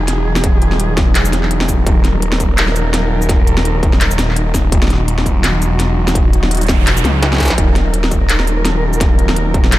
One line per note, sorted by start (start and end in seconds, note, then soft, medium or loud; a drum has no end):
0.00 0.42 E1 loud
0.00 9.79 F#3 medium
0.00 9.79 D#4 medium
0.00 1.86 G#4 medium
0.08 snare medium
0.08 closed hi-hat medium
0.36 snare medium
0.36 shaker soft
0.44 1.14 D#1 medium
0.44 kick loud
0.44 closed hi-hat medium
0.62 closed hi-hat soft
0.72 snare soft
0.80 closed hi-hat medium
0.97 kick loud
0.97 snare medium
0.97 closed hi-hat soft
1.15 1.85 E1 medium
1.15 clap loud
1.15 closed hi-hat medium
1.25 shaker medium
1.33 snare medium
1.33 closed hi-hat soft
1.33 shaker soft
1.43 clap soft
1.51 closed hi-hat medium
1.61 snare medium
1.69 kick medium
1.69 shaker medium
1.87 3.28 D#1 loud
1.87 4.71 A#4 medium
1.87 kick loud
1.87 closed hi-hat medium
2.04 snare soft
2.04 closed hi-hat soft
2.22 closed hi-hat medium
2.32 snare medium
2.40 kick medium
2.40 closed hi-hat soft
2.40 shaker soft
2.58 clap loud
2.58 closed hi-hat medium
2.68 snare soft
2.76 closed hi-hat soft
2.76 shaker soft
2.94 snare medium
2.94 closed hi-hat medium
3.22 shaker soft
3.29 4.71 D#1 loud
3.29 kick loud
3.29 snare medium
3.29 closed hi-hat medium
3.47 closed hi-hat soft
3.57 snare medium
3.65 closed hi-hat medium
3.83 kick loud
3.83 closed hi-hat soft
3.93 snare medium
4.01 clap loud
4.01 closed hi-hat medium
4.11 shaker medium
4.19 snare medium
4.19 closed hi-hat soft
4.19 shaker soft
4.29 clap soft
4.31 clap soft
4.33 clap soft
4.35 clap soft
4.35 closed hi-hat medium
4.54 kick medium
4.54 snare medium
4.54 shaker medium
4.72 5.63 D#1 loud
4.72 7.57 F#4 medium
4.72 kick loud
4.72 closed hi-hat medium
4.82 snare medium
4.84 snare medium
4.88 snare medium
4.90 snare soft
4.90 closed hi-hat soft
4.94 snare soft
4.96 snare soft
5.08 closed hi-hat medium
5.18 snare medium
5.26 kick medium
5.26 closed hi-hat soft
5.26 shaker soft
5.44 clap loud
5.44 snare medium
5.44 closed hi-hat medium
5.61 6.14 E1 medium
5.61 closed hi-hat soft
5.61 shaker soft
5.80 snare medium
5.80 closed hi-hat medium
6.08 snare medium
6.08 shaker soft
6.15 6.86 D#1 medium
6.15 kick loud
6.15 closed hi-hat medium
6.15 noise sweep medium
6.33 closed hi-hat soft
6.43 snare medium
6.51 closed hi-hat medium
6.55 closed hi-hat medium
6.57 closed hi-hat soft
6.61 closed hi-hat soft
6.63 closed hi-hat soft
6.67 kick loud
6.67 snare medium
6.67 closed hi-hat soft
6.69 closed hi-hat soft
6.69 shaker soft
6.87 7.04 E1 medium
6.87 clap loud
6.87 closed hi-hat medium
6.97 shaker medium
7.04 7.49 C#2 medium
7.04 snare medium
7.04 closed hi-hat soft
7.04 high tom medium
7.04 shaker soft
7.23 snare medium
7.23 closed hi-hat medium
7.33 snare soft
7.33 snare medium
7.35 snare soft
7.36 snare soft
7.38 kick medium
7.38 snare soft
7.40 snare medium
7.40 closed hi-hat soft
7.40 shaker soft
7.43 snare medium
7.43 shaker soft
7.45 snare medium
7.45 shaker soft
7.48 snare medium
7.48 shaker medium
7.50 snare medium
7.58 9.00 D#1 loud
7.58 9.79 A#4 medium
7.58 kick loud
7.58 closed hi-hat medium
7.76 snare medium
7.76 closed hi-hat soft
7.94 closed hi-hat medium
8.04 snare medium
8.11 kick medium
8.11 closed hi-hat soft
8.11 shaker soft
8.29 clap loud
8.29 closed hi-hat medium
8.40 snare medium
8.47 closed hi-hat soft
8.47 shaker soft
8.65 snare medium
8.65 closed hi-hat medium
8.93 shaker soft
9.01 9.79 D#1 loud
9.01 kick loud
9.01 snare medium
9.01 closed hi-hat medium
9.19 closed hi-hat soft
9.29 snare medium
9.36 closed hi-hat medium
9.54 kick loud
9.54 closed hi-hat soft
9.64 snare medium
9.72 clap loud
9.72 closed hi-hat medium